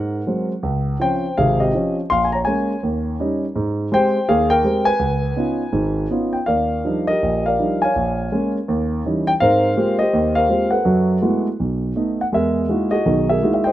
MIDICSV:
0, 0, Header, 1, 2, 480
1, 0, Start_track
1, 0, Tempo, 372208
1, 809, Time_signature, 4, 2, 24, 8
1, 2720, Tempo, 361228
1, 7040, Tempo, 371978
1, 10400, Tempo, 364078
1, 17993, End_track
2, 0, Start_track
2, 0, Title_t, "Grand piano"
2, 0, Program_c, 0, 0
2, 0, Note_on_c, 0, 44, 62
2, 0, Note_on_c, 0, 70, 71
2, 0, Note_on_c, 0, 78, 97
2, 262, Note_off_c, 0, 44, 0
2, 345, Note_on_c, 0, 54, 43
2, 349, Note_on_c, 0, 56, 41
2, 355, Note_on_c, 0, 60, 45
2, 573, Note_off_c, 0, 78, 0
2, 587, Note_off_c, 0, 70, 0
2, 659, Note_off_c, 0, 54, 0
2, 660, Note_off_c, 0, 56, 0
2, 663, Note_off_c, 0, 60, 0
2, 811, Note_on_c, 0, 37, 65
2, 1223, Note_off_c, 0, 37, 0
2, 1286, Note_on_c, 0, 53, 50
2, 1296, Note_on_c, 0, 61, 55
2, 1297, Note_on_c, 0, 60, 48
2, 1307, Note_on_c, 0, 72, 66
2, 1309, Note_on_c, 0, 79, 88
2, 1607, Note_off_c, 0, 53, 0
2, 1612, Note_off_c, 0, 60, 0
2, 1612, Note_off_c, 0, 61, 0
2, 1744, Note_off_c, 0, 72, 0
2, 1745, Note_off_c, 0, 79, 0
2, 1773, Note_on_c, 0, 77, 86
2, 1779, Note_on_c, 0, 32, 66
2, 1780, Note_on_c, 0, 68, 60
2, 1781, Note_on_c, 0, 48, 68
2, 2055, Note_off_c, 0, 68, 0
2, 2062, Note_on_c, 0, 75, 71
2, 2071, Note_on_c, 0, 67, 57
2, 2081, Note_off_c, 0, 77, 0
2, 2186, Note_off_c, 0, 32, 0
2, 2187, Note_off_c, 0, 48, 0
2, 2250, Note_on_c, 0, 53, 52
2, 2255, Note_on_c, 0, 60, 42
2, 2264, Note_on_c, 0, 61, 54
2, 2509, Note_off_c, 0, 75, 0
2, 2514, Note_off_c, 0, 67, 0
2, 2565, Note_off_c, 0, 53, 0
2, 2567, Note_off_c, 0, 60, 0
2, 2572, Note_off_c, 0, 61, 0
2, 2707, Note_on_c, 0, 84, 99
2, 2721, Note_on_c, 0, 34, 59
2, 2732, Note_on_c, 0, 77, 78
2, 2901, Note_on_c, 0, 80, 60
2, 2938, Note_off_c, 0, 77, 0
2, 2948, Note_off_c, 0, 84, 0
2, 3000, Note_off_c, 0, 80, 0
2, 3005, Note_on_c, 0, 82, 85
2, 3033, Note_on_c, 0, 73, 66
2, 3071, Note_off_c, 0, 82, 0
2, 3099, Note_off_c, 0, 73, 0
2, 3136, Note_off_c, 0, 34, 0
2, 3170, Note_on_c, 0, 80, 85
2, 3187, Note_on_c, 0, 73, 64
2, 3198, Note_on_c, 0, 56, 52
2, 3205, Note_on_c, 0, 61, 54
2, 3206, Note_on_c, 0, 58, 47
2, 3523, Note_off_c, 0, 56, 0
2, 3527, Note_off_c, 0, 58, 0
2, 3527, Note_off_c, 0, 61, 0
2, 3634, Note_off_c, 0, 80, 0
2, 3679, Note_on_c, 0, 39, 65
2, 4095, Note_off_c, 0, 39, 0
2, 4165, Note_on_c, 0, 61, 48
2, 4170, Note_on_c, 0, 55, 54
2, 4178, Note_on_c, 0, 63, 53
2, 4405, Note_off_c, 0, 73, 0
2, 4484, Note_off_c, 0, 61, 0
2, 4486, Note_off_c, 0, 55, 0
2, 4490, Note_off_c, 0, 63, 0
2, 4642, Note_on_c, 0, 44, 66
2, 5055, Note_off_c, 0, 44, 0
2, 5122, Note_on_c, 0, 56, 57
2, 5130, Note_on_c, 0, 60, 50
2, 5135, Note_on_c, 0, 67, 58
2, 5146, Note_on_c, 0, 72, 78
2, 5150, Note_on_c, 0, 79, 102
2, 5444, Note_off_c, 0, 56, 0
2, 5448, Note_off_c, 0, 60, 0
2, 5451, Note_off_c, 0, 67, 0
2, 5583, Note_off_c, 0, 72, 0
2, 5585, Note_off_c, 0, 79, 0
2, 5613, Note_on_c, 0, 68, 68
2, 5614, Note_on_c, 0, 77, 90
2, 5617, Note_on_c, 0, 39, 74
2, 5889, Note_off_c, 0, 68, 0
2, 5897, Note_on_c, 0, 79, 103
2, 5910, Note_on_c, 0, 70, 72
2, 5919, Note_off_c, 0, 77, 0
2, 6023, Note_off_c, 0, 39, 0
2, 6087, Note_on_c, 0, 56, 51
2, 6088, Note_on_c, 0, 67, 57
2, 6093, Note_on_c, 0, 60, 45
2, 6345, Note_off_c, 0, 79, 0
2, 6351, Note_off_c, 0, 70, 0
2, 6366, Note_on_c, 0, 80, 100
2, 6386, Note_on_c, 0, 71, 74
2, 6402, Note_off_c, 0, 56, 0
2, 6403, Note_off_c, 0, 67, 0
2, 6405, Note_off_c, 0, 60, 0
2, 6553, Note_on_c, 0, 37, 62
2, 6971, Note_off_c, 0, 37, 0
2, 7044, Note_on_c, 0, 59, 50
2, 7047, Note_on_c, 0, 61, 47
2, 7055, Note_on_c, 0, 63, 49
2, 7060, Note_on_c, 0, 65, 52
2, 7359, Note_off_c, 0, 59, 0
2, 7360, Note_off_c, 0, 61, 0
2, 7365, Note_off_c, 0, 63, 0
2, 7367, Note_off_c, 0, 65, 0
2, 7510, Note_on_c, 0, 32, 64
2, 7511, Note_on_c, 0, 44, 69
2, 7931, Note_off_c, 0, 32, 0
2, 7932, Note_off_c, 0, 44, 0
2, 7944, Note_off_c, 0, 80, 0
2, 7954, Note_off_c, 0, 71, 0
2, 8002, Note_on_c, 0, 59, 49
2, 8008, Note_on_c, 0, 61, 43
2, 8012, Note_on_c, 0, 63, 43
2, 8020, Note_on_c, 0, 65, 53
2, 8288, Note_on_c, 0, 79, 67
2, 8328, Note_off_c, 0, 59, 0
2, 8331, Note_off_c, 0, 61, 0
2, 8333, Note_off_c, 0, 63, 0
2, 8337, Note_off_c, 0, 65, 0
2, 8463, Note_on_c, 0, 77, 79
2, 8465, Note_off_c, 0, 79, 0
2, 8477, Note_on_c, 0, 74, 50
2, 8483, Note_on_c, 0, 70, 53
2, 8484, Note_on_c, 0, 39, 60
2, 8900, Note_off_c, 0, 39, 0
2, 8960, Note_on_c, 0, 55, 45
2, 8963, Note_on_c, 0, 53, 49
2, 8966, Note_on_c, 0, 62, 44
2, 8976, Note_on_c, 0, 63, 49
2, 9207, Note_off_c, 0, 77, 0
2, 9252, Note_on_c, 0, 75, 91
2, 9254, Note_off_c, 0, 70, 0
2, 9274, Note_on_c, 0, 70, 56
2, 9284, Note_on_c, 0, 67, 54
2, 9285, Note_off_c, 0, 55, 0
2, 9286, Note_off_c, 0, 53, 0
2, 9288, Note_off_c, 0, 62, 0
2, 9293, Note_off_c, 0, 63, 0
2, 9392, Note_off_c, 0, 74, 0
2, 9444, Note_on_c, 0, 34, 60
2, 9706, Note_off_c, 0, 75, 0
2, 9747, Note_on_c, 0, 77, 73
2, 9748, Note_off_c, 0, 70, 0
2, 9767, Note_on_c, 0, 70, 54
2, 9772, Note_on_c, 0, 74, 54
2, 9858, Note_off_c, 0, 34, 0
2, 9917, Note_on_c, 0, 53, 42
2, 9921, Note_on_c, 0, 55, 42
2, 9926, Note_on_c, 0, 62, 40
2, 9934, Note_on_c, 0, 63, 52
2, 10180, Note_off_c, 0, 67, 0
2, 10191, Note_off_c, 0, 77, 0
2, 10212, Note_on_c, 0, 80, 83
2, 10239, Note_off_c, 0, 53, 0
2, 10240, Note_off_c, 0, 55, 0
2, 10242, Note_on_c, 0, 77, 61
2, 10243, Note_off_c, 0, 62, 0
2, 10247, Note_off_c, 0, 63, 0
2, 10249, Note_on_c, 0, 73, 60
2, 10365, Note_off_c, 0, 70, 0
2, 10367, Note_off_c, 0, 74, 0
2, 10388, Note_on_c, 0, 34, 60
2, 10809, Note_off_c, 0, 34, 0
2, 10871, Note_on_c, 0, 56, 49
2, 10872, Note_on_c, 0, 58, 45
2, 10879, Note_on_c, 0, 61, 56
2, 11123, Note_off_c, 0, 80, 0
2, 11138, Note_off_c, 0, 77, 0
2, 11142, Note_off_c, 0, 73, 0
2, 11195, Note_off_c, 0, 56, 0
2, 11195, Note_off_c, 0, 58, 0
2, 11199, Note_off_c, 0, 61, 0
2, 11349, Note_on_c, 0, 39, 70
2, 11765, Note_off_c, 0, 39, 0
2, 11841, Note_on_c, 0, 52, 45
2, 11841, Note_on_c, 0, 55, 45
2, 11843, Note_on_c, 0, 61, 46
2, 11846, Note_on_c, 0, 63, 53
2, 12126, Note_on_c, 0, 79, 97
2, 12157, Note_off_c, 0, 52, 0
2, 12157, Note_off_c, 0, 55, 0
2, 12158, Note_off_c, 0, 61, 0
2, 12160, Note_off_c, 0, 63, 0
2, 12192, Note_off_c, 0, 79, 0
2, 12298, Note_on_c, 0, 77, 96
2, 12312, Note_on_c, 0, 44, 64
2, 12313, Note_on_c, 0, 60, 62
2, 12324, Note_on_c, 0, 72, 60
2, 12329, Note_on_c, 0, 70, 69
2, 12721, Note_off_c, 0, 44, 0
2, 12721, Note_off_c, 0, 60, 0
2, 12778, Note_on_c, 0, 58, 51
2, 12779, Note_on_c, 0, 60, 46
2, 12780, Note_on_c, 0, 56, 49
2, 12781, Note_on_c, 0, 65, 47
2, 12785, Note_on_c, 0, 67, 56
2, 13023, Note_off_c, 0, 77, 0
2, 13068, Note_on_c, 0, 75, 90
2, 13069, Note_off_c, 0, 67, 0
2, 13076, Note_off_c, 0, 72, 0
2, 13089, Note_on_c, 0, 67, 62
2, 13096, Note_on_c, 0, 72, 59
2, 13097, Note_off_c, 0, 56, 0
2, 13097, Note_off_c, 0, 58, 0
2, 13097, Note_off_c, 0, 60, 0
2, 13098, Note_off_c, 0, 65, 0
2, 13214, Note_off_c, 0, 70, 0
2, 13257, Note_on_c, 0, 39, 69
2, 13550, Note_on_c, 0, 77, 93
2, 13557, Note_off_c, 0, 72, 0
2, 13565, Note_off_c, 0, 75, 0
2, 13576, Note_on_c, 0, 72, 51
2, 13581, Note_on_c, 0, 70, 54
2, 13668, Note_off_c, 0, 39, 0
2, 13722, Note_off_c, 0, 67, 0
2, 13732, Note_on_c, 0, 58, 46
2, 13735, Note_on_c, 0, 56, 45
2, 13741, Note_on_c, 0, 67, 50
2, 13742, Note_on_c, 0, 60, 45
2, 13744, Note_on_c, 0, 65, 39
2, 13996, Note_off_c, 0, 77, 0
2, 14014, Note_on_c, 0, 78, 73
2, 14028, Note_on_c, 0, 69, 52
2, 14033, Note_on_c, 0, 71, 54
2, 14051, Note_off_c, 0, 58, 0
2, 14052, Note_off_c, 0, 56, 0
2, 14055, Note_off_c, 0, 60, 0
2, 14055, Note_off_c, 0, 67, 0
2, 14056, Note_off_c, 0, 65, 0
2, 14174, Note_off_c, 0, 72, 0
2, 14177, Note_off_c, 0, 70, 0
2, 14204, Note_on_c, 0, 42, 63
2, 14205, Note_on_c, 0, 54, 65
2, 14620, Note_off_c, 0, 42, 0
2, 14620, Note_off_c, 0, 54, 0
2, 14691, Note_on_c, 0, 56, 51
2, 14694, Note_on_c, 0, 57, 47
2, 14695, Note_on_c, 0, 64, 44
2, 14697, Note_on_c, 0, 66, 52
2, 14699, Note_on_c, 0, 59, 45
2, 14931, Note_off_c, 0, 78, 0
2, 14938, Note_off_c, 0, 69, 0
2, 14940, Note_off_c, 0, 71, 0
2, 15012, Note_off_c, 0, 56, 0
2, 15014, Note_off_c, 0, 57, 0
2, 15014, Note_off_c, 0, 64, 0
2, 15015, Note_off_c, 0, 66, 0
2, 15016, Note_off_c, 0, 59, 0
2, 15190, Note_on_c, 0, 35, 57
2, 15602, Note_off_c, 0, 35, 0
2, 15667, Note_on_c, 0, 57, 46
2, 15674, Note_on_c, 0, 59, 37
2, 15677, Note_on_c, 0, 63, 49
2, 15990, Note_off_c, 0, 57, 0
2, 15993, Note_off_c, 0, 59, 0
2, 15995, Note_off_c, 0, 63, 0
2, 16000, Note_on_c, 0, 78, 70
2, 16066, Note_off_c, 0, 78, 0
2, 16145, Note_on_c, 0, 40, 57
2, 16151, Note_on_c, 0, 56, 58
2, 16172, Note_on_c, 0, 70, 57
2, 16175, Note_on_c, 0, 76, 72
2, 16181, Note_on_c, 0, 68, 51
2, 16564, Note_off_c, 0, 40, 0
2, 16568, Note_off_c, 0, 56, 0
2, 16633, Note_on_c, 0, 56, 48
2, 16640, Note_on_c, 0, 58, 45
2, 16643, Note_on_c, 0, 63, 39
2, 16646, Note_on_c, 0, 66, 53
2, 16647, Note_on_c, 0, 64, 41
2, 16901, Note_off_c, 0, 76, 0
2, 16915, Note_off_c, 0, 66, 0
2, 16918, Note_off_c, 0, 68, 0
2, 16920, Note_on_c, 0, 75, 85
2, 16934, Note_on_c, 0, 66, 56
2, 16938, Note_on_c, 0, 68, 58
2, 16958, Note_off_c, 0, 56, 0
2, 16961, Note_off_c, 0, 58, 0
2, 16963, Note_off_c, 0, 63, 0
2, 16965, Note_off_c, 0, 64, 0
2, 17079, Note_off_c, 0, 70, 0
2, 17113, Note_on_c, 0, 51, 68
2, 17115, Note_on_c, 0, 35, 62
2, 17379, Note_off_c, 0, 75, 0
2, 17416, Note_off_c, 0, 68, 0
2, 17428, Note_on_c, 0, 76, 74
2, 17436, Note_on_c, 0, 68, 52
2, 17440, Note_on_c, 0, 70, 51
2, 17531, Note_off_c, 0, 51, 0
2, 17532, Note_off_c, 0, 35, 0
2, 17597, Note_off_c, 0, 66, 0
2, 17599, Note_on_c, 0, 56, 49
2, 17606, Note_on_c, 0, 63, 47
2, 17608, Note_on_c, 0, 58, 44
2, 17609, Note_on_c, 0, 64, 42
2, 17616, Note_on_c, 0, 66, 54
2, 17732, Note_off_c, 0, 76, 0
2, 17751, Note_on_c, 0, 76, 55
2, 17884, Note_off_c, 0, 76, 0
2, 17884, Note_on_c, 0, 79, 77
2, 17912, Note_on_c, 0, 72, 64
2, 17918, Note_off_c, 0, 56, 0
2, 17919, Note_on_c, 0, 75, 64
2, 17922, Note_off_c, 0, 63, 0
2, 17923, Note_off_c, 0, 58, 0
2, 17923, Note_off_c, 0, 64, 0
2, 17927, Note_off_c, 0, 66, 0
2, 17993, Note_off_c, 0, 68, 0
2, 17993, Note_off_c, 0, 70, 0
2, 17993, Note_off_c, 0, 72, 0
2, 17993, Note_off_c, 0, 75, 0
2, 17993, Note_off_c, 0, 79, 0
2, 17993, End_track
0, 0, End_of_file